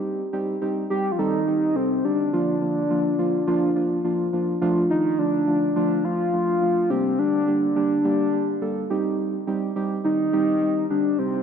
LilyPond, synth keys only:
\new Staff \with { instrumentName = "Synth keys" } { \time 4/4 \key c \dorian \tempo 4 = 105 <g c' ees' g'>8 <g c' ees' g'>8 <g c' ees' g'>8 <g c' ees' g'>8 <g c' ees' a'>8 <g c' ees' g'>8 <g c' ees' a'>8 <g c' ees' g'>8 | <f bes d' f'>8 <f bes d' f'>8 <f bes d' f'>8 <f bes d' f'>8 <f bes d' f'>8 <f bes d' f'>8 <f bes d' f'>8 <f bes d' f'>8 | <f a d' f'>8 <f a d' f'>8 <f a d' f'>8 <f a d' f'>8 <f a d' f'>8 <f a d' f'>8 <f a d' f'>8 <f a d' f'>8 | <g bes d' g'>8 <g bes d' g'>8 <g bes d' g'>8 <g bes d' g'>8 <g bes d' g'>8 <g bes d' g'>8 <g bes d' a'>8 <g c' ees' g'>8~ |
<g c' ees' g'>8 <g c' ees' g'>8 <g c' ees' g'>8 <g c' ees' g'>8 <g c' ees' g'>8 <g c' ees' g'>8 <g c' ees' g'>8 <g c' ees' g'>8 | }